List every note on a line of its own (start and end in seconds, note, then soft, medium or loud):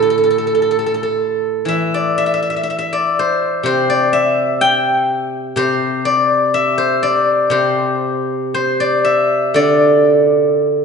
0.00 2.66 A2 soft
0.00 0.64 D3 soft
0.00 0.02 A4 medium
0.00 0.10 A4 soft
0.10 0.17 A4 soft
0.18 0.23 A4 soft
0.24 0.30 A4 soft
0.31 0.38 A4 soft
0.38 0.46 A4 soft
0.47 0.54 A4 soft
0.55 0.61 A4 soft
0.62 0.70 A4 soft
0.71 0.78 A4 soft
0.79 0.86 A4 soft
0.86 0.94 A4 soft
0.94 1.03 A4 soft
1.03 3.22 A4 soft
1.65 4.62 E3 soft
1.65 2.17 E5 medium
1.94 2.92 D5 medium
2.18 2.26 E5 medium
2.26 2.33 E5 soft
2.34 2.42 E5 soft
2.42 2.50 E5 soft
2.50 2.56 E5 soft
2.56 2.63 E5 soft
2.63 2.70 E5 soft
2.70 2.78 E5 soft
2.79 4.12 E5 soft
2.93 3.89 D5 medium
3.19 3.65 C5 medium
3.63 5.55 C3 soft
3.63 5.57 C5 medium
3.90 5.74 D5 medium
4.13 5.07 E5 medium
4.61 5.07 G5 medium
5.07 6.16 E5 medium
5.56 7.49 C3 soft
5.56 6.77 C5 medium
6.05 7.02 D5 medium
6.54 8.26 E5 medium
6.78 7.51 C5 medium
7.03 8.80 D5 medium
7.50 10.54 C3 soft
7.50 8.54 C5 medium
8.54 10.52 C5 medium
8.80 9.55 D5 medium
9.05 10.76 E5 medium
9.54 10.85 D3 soft
9.54 10.85 D5 medium